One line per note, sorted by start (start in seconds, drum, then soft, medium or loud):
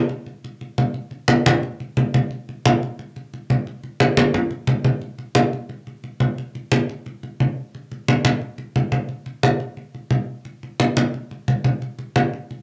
0.09 high conga soft
0.26 high conga soft
0.44 high conga soft
0.61 high conga soft
0.78 high conga medium
0.94 high conga soft
1.11 high conga soft
1.28 high conga loud
1.46 high conga loud
1.46 low conga medium
1.63 high conga soft
1.80 high conga soft
1.97 high conga medium
2.14 high conga medium
2.31 high conga soft
2.49 high conga soft
2.65 high conga loud
2.83 high conga soft
2.99 high conga soft
3.16 high conga soft
3.34 high conga soft
3.50 high conga medium
3.67 high conga soft
3.84 high conga soft
4.00 high conga loud
4.17 high conga loud
4.17 low conga medium
4.34 high conga soft
4.34 low conga medium
4.51 high conga soft
4.67 high conga medium
4.84 high conga medium
5.02 high conga soft
5.18 high conga soft
5.35 high conga loud
5.53 high conga soft
5.69 high conga soft
5.87 high conga soft
6.04 high conga soft
6.20 high conga medium
6.38 high conga soft
6.55 high conga soft
6.72 high conga medium
6.89 high conga soft
7.06 high conga soft
7.23 high conga soft
7.40 high conga medium
7.75 high conga soft
7.92 high conga soft
8.08 high conga medium
8.25 high conga medium
8.42 high conga soft
8.58 high conga soft
8.76 high conga medium
8.92 high conga medium
9.09 high conga soft
9.26 high conga soft
9.43 high conga loud
9.60 high conga soft
9.77 high conga soft
9.95 high conga soft
10.11 high conga medium
10.45 high conga soft
10.63 high conga soft
10.80 high conga medium
10.97 high conga medium
11.14 high conga soft
11.31 high conga soft
11.48 high conga medium
11.64 high conga medium
11.82 high conga soft
11.99 high conga soft
12.16 high conga medium
12.33 high conga soft
12.51 high conga soft